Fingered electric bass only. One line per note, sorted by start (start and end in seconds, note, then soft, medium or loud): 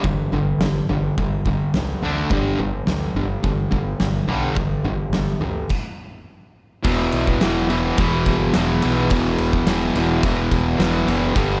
0.05 0.25 G1 medium
0.31 0.53 G1 medium
0.58 0.80 G1 medium
0.89 1.10 G1 medium
1.18 1.60 G1 medium
1.73 1.95 C#2 medium
2.02 2.23 D2 medium
2.31 2.52 G1 loud
2.60 2.81 G1 medium
2.88 3.09 D2 medium
3.14 3.36 G1 medium
3.44 3.65 G1 medium
3.71 3.93 G1 medium
4.00 4.21 G1 medium
4.27 4.49 B1 medium
4.57 4.79 G1 medium
4.83 5.05 G1 medium
5.10 5.33 G1 medium
5.40 5.62 D2 medium
6.85 7.09 E1 medium
7.13 7.38 B1 medium
7.43 7.92 E1 medium
7.99 8.23 E1 medium
8.27 8.51 G1 medium
8.55 8.79 E1 loud
8.84 9.08 B1 medium
9.11 9.35 E1 loud
9.39 9.63 E1 medium
9.66 9.91 E1 medium
9.94 10.19 E1 medium
10.24 10.48 E1 loud
10.52 10.76 E1 medium
10.79 11.03 E1 medium
11.07 11.32 F#1 loud
11.37 11.60 G1 loud